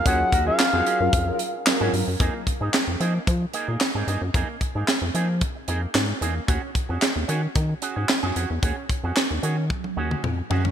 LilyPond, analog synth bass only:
\new Staff \with { instrumentName = "Analog synth bass" } { \clef bass \time 4/4 \key f \phrygian \tempo 4 = 112 ees,8 ees,8 r16 f,16 r16 ges,16 f,8 r8. aes,16 g,16 ges,16 | f,16 r8 aes,16 r16 f,16 f8 f8 r16 bes,16 r16 aes,16 g,16 ges,16 | f,16 r8 aes,16 r16 f,16 f8. r16 f,8 aes,8 e,8 | ees,16 r8 f,16 r16 ees,16 ees8 ees8 r16 aes,16 r16 ges,16 f,16 e,16 |
ees,16 r8 f,16 r16 ees,16 ees8. r16 ees,8 f,8 ges,8 | }